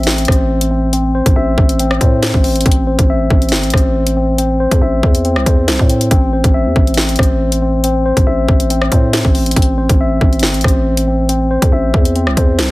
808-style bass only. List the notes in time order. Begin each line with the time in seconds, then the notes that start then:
Already playing: A1
0.28 A1
1.26 A1
1.36 A1
1.58 A1
2.01 A2
2.34 A1
2.66 A1
2.99 A1
3.30 A1
3.52 G1
3.63 A1
3.74 A1
4.71 E2
4.82 A1
5.03 E2
5.36 C2
5.46 E2
5.68 C2
5.79 A2
6.11 A1
6.44 A1
6.66 E2
6.76 A1
7.19 A1
8.17 A1
8.27 A1
8.49 A1
8.92 A2
9.25 A1
9.56 A1
9.89 A1
10.21 A1
10.43 G1
10.54 A1
10.64 A1
11.62 E2
11.72 A1
11.94 E2
12.27 C2
12.37 E2
12.59 C2